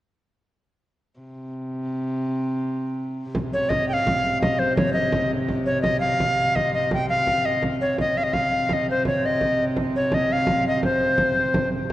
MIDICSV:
0, 0, Header, 1, 4, 480
1, 0, Start_track
1, 0, Tempo, 356506
1, 1624, Time_signature, 6, 3, 24, 8
1, 16059, End_track
2, 0, Start_track
2, 0, Title_t, "Recorder"
2, 0, Program_c, 0, 74
2, 4761, Note_on_c, 0, 73, 73
2, 4974, Note_on_c, 0, 75, 74
2, 4994, Note_off_c, 0, 73, 0
2, 5221, Note_off_c, 0, 75, 0
2, 5234, Note_on_c, 0, 79, 75
2, 5299, Note_on_c, 0, 77, 81
2, 5312, Note_off_c, 0, 79, 0
2, 5902, Note_off_c, 0, 77, 0
2, 5947, Note_on_c, 0, 75, 76
2, 6182, Note_on_c, 0, 72, 74
2, 6202, Note_off_c, 0, 75, 0
2, 6411, Note_off_c, 0, 72, 0
2, 6419, Note_on_c, 0, 73, 77
2, 6631, Note_off_c, 0, 73, 0
2, 6639, Note_on_c, 0, 75, 80
2, 7156, Note_off_c, 0, 75, 0
2, 7622, Note_on_c, 0, 73, 72
2, 7830, Note_off_c, 0, 73, 0
2, 7838, Note_on_c, 0, 75, 77
2, 8077, Note_off_c, 0, 75, 0
2, 8082, Note_on_c, 0, 77, 89
2, 8828, Note_on_c, 0, 75, 88
2, 8849, Note_off_c, 0, 77, 0
2, 9070, Note_off_c, 0, 75, 0
2, 9076, Note_on_c, 0, 75, 75
2, 9297, Note_off_c, 0, 75, 0
2, 9342, Note_on_c, 0, 79, 88
2, 9542, Note_off_c, 0, 79, 0
2, 9550, Note_on_c, 0, 77, 90
2, 10037, Note_on_c, 0, 75, 83
2, 10057, Note_off_c, 0, 77, 0
2, 10274, Note_off_c, 0, 75, 0
2, 10519, Note_on_c, 0, 73, 78
2, 10738, Note_off_c, 0, 73, 0
2, 10773, Note_on_c, 0, 75, 79
2, 11008, Note_on_c, 0, 77, 90
2, 11028, Note_off_c, 0, 75, 0
2, 11090, Note_on_c, 0, 75, 69
2, 11110, Note_off_c, 0, 77, 0
2, 11221, Note_on_c, 0, 77, 81
2, 11242, Note_off_c, 0, 75, 0
2, 11755, Note_on_c, 0, 75, 89
2, 11775, Note_off_c, 0, 77, 0
2, 11972, Note_off_c, 0, 75, 0
2, 11987, Note_on_c, 0, 72, 74
2, 12192, Note_off_c, 0, 72, 0
2, 12211, Note_on_c, 0, 73, 76
2, 12462, Note_on_c, 0, 75, 77
2, 12483, Note_off_c, 0, 73, 0
2, 12984, Note_off_c, 0, 75, 0
2, 13407, Note_on_c, 0, 73, 72
2, 13652, Note_on_c, 0, 75, 76
2, 13672, Note_off_c, 0, 73, 0
2, 13897, Note_on_c, 0, 77, 84
2, 13917, Note_off_c, 0, 75, 0
2, 14360, Note_off_c, 0, 77, 0
2, 14373, Note_on_c, 0, 75, 76
2, 14582, Note_off_c, 0, 75, 0
2, 14599, Note_on_c, 0, 72, 73
2, 15734, Note_off_c, 0, 72, 0
2, 16059, End_track
3, 0, Start_track
3, 0, Title_t, "Viola da gamba"
3, 0, Program_c, 1, 42
3, 1616, Note_on_c, 1, 48, 59
3, 4491, Note_off_c, 1, 48, 0
3, 4499, Note_on_c, 1, 48, 61
3, 10266, Note_off_c, 1, 48, 0
3, 10274, Note_on_c, 1, 48, 63
3, 15996, Note_off_c, 1, 48, 0
3, 16004, Note_on_c, 1, 48, 63
3, 16059, Note_off_c, 1, 48, 0
3, 16059, End_track
4, 0, Start_track
4, 0, Title_t, "Frame drum"
4, 4510, Note_on_c, 9, 64, 74
4, 4644, Note_off_c, 9, 64, 0
4, 4987, Note_on_c, 9, 64, 81
4, 5122, Note_off_c, 9, 64, 0
4, 5242, Note_on_c, 9, 64, 25
4, 5377, Note_off_c, 9, 64, 0
4, 5478, Note_on_c, 9, 64, 80
4, 5613, Note_off_c, 9, 64, 0
4, 5722, Note_on_c, 9, 64, 27
4, 5856, Note_off_c, 9, 64, 0
4, 5960, Note_on_c, 9, 64, 82
4, 6095, Note_off_c, 9, 64, 0
4, 6426, Note_on_c, 9, 64, 89
4, 6561, Note_off_c, 9, 64, 0
4, 6669, Note_on_c, 9, 64, 23
4, 6804, Note_off_c, 9, 64, 0
4, 6898, Note_on_c, 9, 64, 78
4, 7033, Note_off_c, 9, 64, 0
4, 7152, Note_on_c, 9, 64, 26
4, 7286, Note_off_c, 9, 64, 0
4, 7387, Note_on_c, 9, 64, 71
4, 7522, Note_off_c, 9, 64, 0
4, 7861, Note_on_c, 9, 64, 78
4, 7996, Note_off_c, 9, 64, 0
4, 8114, Note_on_c, 9, 64, 21
4, 8249, Note_off_c, 9, 64, 0
4, 8348, Note_on_c, 9, 64, 67
4, 8482, Note_off_c, 9, 64, 0
4, 8598, Note_on_c, 9, 64, 22
4, 8732, Note_off_c, 9, 64, 0
4, 8834, Note_on_c, 9, 64, 64
4, 8968, Note_off_c, 9, 64, 0
4, 9078, Note_on_c, 9, 64, 20
4, 9213, Note_off_c, 9, 64, 0
4, 9308, Note_on_c, 9, 64, 73
4, 9442, Note_off_c, 9, 64, 0
4, 9790, Note_on_c, 9, 64, 66
4, 9924, Note_off_c, 9, 64, 0
4, 10268, Note_on_c, 9, 64, 69
4, 10402, Note_off_c, 9, 64, 0
4, 10751, Note_on_c, 9, 64, 70
4, 10886, Note_off_c, 9, 64, 0
4, 10989, Note_on_c, 9, 64, 20
4, 11124, Note_off_c, 9, 64, 0
4, 11219, Note_on_c, 9, 64, 67
4, 11354, Note_off_c, 9, 64, 0
4, 11471, Note_on_c, 9, 64, 22
4, 11605, Note_off_c, 9, 64, 0
4, 11704, Note_on_c, 9, 64, 67
4, 11839, Note_off_c, 9, 64, 0
4, 12187, Note_on_c, 9, 64, 68
4, 12322, Note_off_c, 9, 64, 0
4, 12429, Note_on_c, 9, 64, 21
4, 12564, Note_off_c, 9, 64, 0
4, 12670, Note_on_c, 9, 64, 61
4, 12805, Note_off_c, 9, 64, 0
4, 12911, Note_on_c, 9, 64, 22
4, 13046, Note_off_c, 9, 64, 0
4, 13147, Note_on_c, 9, 64, 64
4, 13282, Note_off_c, 9, 64, 0
4, 13619, Note_on_c, 9, 64, 69
4, 13753, Note_off_c, 9, 64, 0
4, 13856, Note_on_c, 9, 64, 21
4, 13991, Note_off_c, 9, 64, 0
4, 14090, Note_on_c, 9, 64, 76
4, 14225, Note_off_c, 9, 64, 0
4, 14345, Note_on_c, 9, 64, 23
4, 14479, Note_off_c, 9, 64, 0
4, 14579, Note_on_c, 9, 64, 71
4, 14714, Note_off_c, 9, 64, 0
4, 15049, Note_on_c, 9, 64, 80
4, 15184, Note_off_c, 9, 64, 0
4, 15538, Note_on_c, 9, 64, 81
4, 15673, Note_off_c, 9, 64, 0
4, 16059, End_track
0, 0, End_of_file